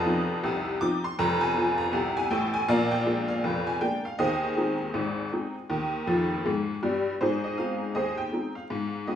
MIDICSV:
0, 0, Header, 1, 2, 480
1, 0, Start_track
1, 0, Key_signature, -4, "major"
1, 0, Tempo, 750939
1, 757, Time_signature, 2, 2, 24, 8
1, 5851, End_track
2, 0, Start_track
2, 0, Title_t, "Honky-tonk piano"
2, 0, Program_c, 0, 3
2, 0, Control_c, 0, 64, 127
2, 0, Note_on_c, 0, 29, 97
2, 0, Note_on_c, 0, 41, 106
2, 0, Note_on_c, 0, 75, 94
2, 0, Note_on_c, 0, 77, 88
2, 0, Note_on_c, 0, 81, 116
2, 36, Note_on_c, 0, 53, 53
2, 40, Note_on_c, 0, 60, 56
2, 41, Note_on_c, 0, 63, 58
2, 169, Note_off_c, 0, 53, 0
2, 172, Note_off_c, 0, 60, 0
2, 172, Note_off_c, 0, 63, 0
2, 277, Note_on_c, 0, 36, 89
2, 277, Note_on_c, 0, 48, 91
2, 287, Control_c, 0, 64, 0
2, 293, Note_off_c, 0, 29, 0
2, 293, Note_off_c, 0, 41, 0
2, 481, Note_off_c, 0, 36, 0
2, 481, Note_off_c, 0, 48, 0
2, 497, Note_off_c, 0, 75, 0
2, 497, Note_off_c, 0, 77, 0
2, 517, Note_on_c, 0, 86, 113
2, 518, Note_on_c, 0, 53, 53
2, 519, Note_off_c, 0, 81, 0
2, 520, Note_on_c, 0, 60, 52
2, 525, Note_on_c, 0, 63, 68
2, 650, Note_off_c, 0, 53, 0
2, 651, Note_off_c, 0, 60, 0
2, 654, Note_off_c, 0, 63, 0
2, 660, Note_off_c, 0, 86, 0
2, 667, Note_on_c, 0, 84, 84
2, 759, Note_on_c, 0, 29, 96
2, 759, Note_on_c, 0, 41, 108
2, 760, Note_off_c, 0, 84, 0
2, 760, Note_on_c, 0, 82, 117
2, 882, Control_c, 0, 64, 127
2, 902, Note_off_c, 0, 82, 0
2, 902, Note_on_c, 0, 80, 99
2, 961, Note_off_c, 0, 29, 0
2, 961, Note_off_c, 0, 41, 0
2, 998, Note_on_c, 0, 53, 60
2, 1001, Note_on_c, 0, 60, 55
2, 1003, Note_on_c, 0, 65, 63
2, 1129, Note_off_c, 0, 53, 0
2, 1131, Note_off_c, 0, 60, 0
2, 1133, Note_off_c, 0, 65, 0
2, 1137, Note_on_c, 0, 82, 94
2, 1140, Note_off_c, 0, 80, 0
2, 1232, Note_on_c, 0, 48, 85
2, 1233, Note_on_c, 0, 36, 89
2, 1242, Control_c, 0, 64, 0
2, 1377, Note_off_c, 0, 82, 0
2, 1386, Note_on_c, 0, 80, 92
2, 1436, Note_off_c, 0, 48, 0
2, 1437, Note_off_c, 0, 36, 0
2, 1474, Note_on_c, 0, 79, 91
2, 1475, Note_on_c, 0, 33, 84
2, 1475, Note_on_c, 0, 45, 89
2, 1478, Note_off_c, 0, 80, 0
2, 1617, Note_off_c, 0, 79, 0
2, 1621, Note_on_c, 0, 80, 96
2, 1666, Note_off_c, 0, 33, 0
2, 1666, Note_off_c, 0, 45, 0
2, 1715, Note_off_c, 0, 80, 0
2, 1715, Note_on_c, 0, 34, 85
2, 1715, Note_on_c, 0, 77, 109
2, 1716, Note_on_c, 0, 46, 99
2, 1720, Note_on_c, 0, 70, 81
2, 1721, Note_on_c, 0, 74, 83
2, 1836, Control_c, 0, 64, 127
2, 1850, Note_off_c, 0, 70, 0
2, 1851, Note_off_c, 0, 74, 0
2, 1858, Note_off_c, 0, 77, 0
2, 1861, Note_on_c, 0, 79, 100
2, 1918, Note_off_c, 0, 34, 0
2, 1918, Note_off_c, 0, 46, 0
2, 1955, Note_on_c, 0, 56, 55
2, 1958, Note_on_c, 0, 58, 52
2, 1961, Note_on_c, 0, 62, 66
2, 2087, Note_off_c, 0, 56, 0
2, 2089, Note_off_c, 0, 58, 0
2, 2091, Note_off_c, 0, 62, 0
2, 2098, Note_off_c, 0, 79, 0
2, 2099, Note_on_c, 0, 77, 86
2, 2198, Control_c, 0, 64, 0
2, 2199, Note_on_c, 0, 29, 82
2, 2199, Note_on_c, 0, 41, 84
2, 2337, Note_off_c, 0, 77, 0
2, 2346, Note_on_c, 0, 80, 81
2, 2401, Note_off_c, 0, 29, 0
2, 2401, Note_off_c, 0, 41, 0
2, 2435, Note_on_c, 0, 56, 48
2, 2435, Note_on_c, 0, 79, 84
2, 2437, Note_on_c, 0, 58, 55
2, 2438, Note_off_c, 0, 80, 0
2, 2440, Note_on_c, 0, 62, 56
2, 2567, Note_off_c, 0, 56, 0
2, 2568, Note_off_c, 0, 58, 0
2, 2571, Note_off_c, 0, 62, 0
2, 2578, Note_off_c, 0, 79, 0
2, 2589, Note_on_c, 0, 77, 76
2, 2675, Note_on_c, 0, 39, 77
2, 2676, Note_on_c, 0, 51, 87
2, 2676, Note_on_c, 0, 75, 89
2, 2680, Note_off_c, 0, 77, 0
2, 2681, Note_on_c, 0, 68, 67
2, 2682, Note_on_c, 0, 72, 66
2, 2801, Control_c, 0, 64, 127
2, 2879, Note_off_c, 0, 39, 0
2, 2880, Note_off_c, 0, 51, 0
2, 2919, Note_on_c, 0, 56, 50
2, 2921, Note_on_c, 0, 60, 48
2, 2924, Note_on_c, 0, 63, 54
2, 3050, Note_off_c, 0, 56, 0
2, 3052, Note_off_c, 0, 60, 0
2, 3054, Note_off_c, 0, 63, 0
2, 3157, Note_on_c, 0, 32, 74
2, 3158, Note_on_c, 0, 44, 80
2, 3165, Control_c, 0, 64, 0
2, 3361, Note_off_c, 0, 32, 0
2, 3362, Note_off_c, 0, 44, 0
2, 3402, Note_on_c, 0, 56, 43
2, 3404, Note_on_c, 0, 60, 49
2, 3408, Note_on_c, 0, 63, 47
2, 3534, Note_off_c, 0, 56, 0
2, 3535, Note_off_c, 0, 60, 0
2, 3538, Note_off_c, 0, 63, 0
2, 3640, Note_on_c, 0, 39, 72
2, 3640, Note_on_c, 0, 51, 92
2, 3770, Control_c, 0, 64, 127
2, 3844, Note_off_c, 0, 39, 0
2, 3844, Note_off_c, 0, 51, 0
2, 3880, Note_on_c, 0, 41, 74
2, 3881, Note_on_c, 0, 53, 76
2, 4060, Note_off_c, 0, 41, 0
2, 4062, Note_off_c, 0, 53, 0
2, 4099, Note_off_c, 0, 68, 0
2, 4099, Note_off_c, 0, 72, 0
2, 4122, Note_off_c, 0, 75, 0
2, 4126, Note_on_c, 0, 44, 78
2, 4126, Note_on_c, 0, 56, 76
2, 4129, Control_c, 0, 64, 0
2, 4305, Note_off_c, 0, 44, 0
2, 4305, Note_off_c, 0, 56, 0
2, 4364, Note_on_c, 0, 55, 69
2, 4365, Note_on_c, 0, 43, 76
2, 4544, Note_off_c, 0, 43, 0
2, 4544, Note_off_c, 0, 55, 0
2, 4607, Note_on_c, 0, 72, 74
2, 4609, Note_on_c, 0, 44, 73
2, 4614, Note_on_c, 0, 68, 56
2, 4616, Note_on_c, 0, 63, 59
2, 4727, Control_c, 0, 64, 127
2, 4742, Note_off_c, 0, 68, 0
2, 4744, Note_off_c, 0, 63, 0
2, 4748, Note_off_c, 0, 72, 0
2, 4755, Note_on_c, 0, 75, 66
2, 4811, Note_off_c, 0, 44, 0
2, 4843, Note_on_c, 0, 77, 69
2, 4846, Note_on_c, 0, 56, 41
2, 4847, Note_off_c, 0, 75, 0
2, 4848, Note_on_c, 0, 60, 40
2, 4851, Note_on_c, 0, 63, 43
2, 4977, Note_off_c, 0, 56, 0
2, 4979, Note_off_c, 0, 60, 0
2, 4981, Note_off_c, 0, 63, 0
2, 5080, Note_on_c, 0, 39, 59
2, 5080, Note_on_c, 0, 75, 73
2, 5083, Note_off_c, 0, 77, 0
2, 5086, Note_on_c, 0, 72, 57
2, 5089, Note_on_c, 0, 68, 58
2, 5090, Control_c, 0, 64, 0
2, 5218, Note_off_c, 0, 72, 0
2, 5219, Note_off_c, 0, 68, 0
2, 5225, Note_off_c, 0, 75, 0
2, 5225, Note_on_c, 0, 79, 67
2, 5285, Note_off_c, 0, 39, 0
2, 5320, Note_on_c, 0, 56, 38
2, 5323, Note_on_c, 0, 60, 42
2, 5327, Note_on_c, 0, 63, 42
2, 5452, Note_off_c, 0, 56, 0
2, 5455, Note_off_c, 0, 60, 0
2, 5457, Note_off_c, 0, 63, 0
2, 5465, Note_off_c, 0, 79, 0
2, 5467, Note_on_c, 0, 77, 56
2, 5563, Note_on_c, 0, 44, 75
2, 5690, Control_c, 0, 64, 127
2, 5766, Note_off_c, 0, 44, 0
2, 5801, Note_on_c, 0, 56, 46
2, 5801, Note_on_c, 0, 75, 67
2, 5802, Note_off_c, 0, 77, 0
2, 5805, Note_on_c, 0, 60, 44
2, 5807, Note_on_c, 0, 66, 43
2, 5851, Note_off_c, 0, 56, 0
2, 5851, Note_off_c, 0, 60, 0
2, 5851, Note_off_c, 0, 66, 0
2, 5851, Note_off_c, 0, 75, 0
2, 5851, End_track
0, 0, End_of_file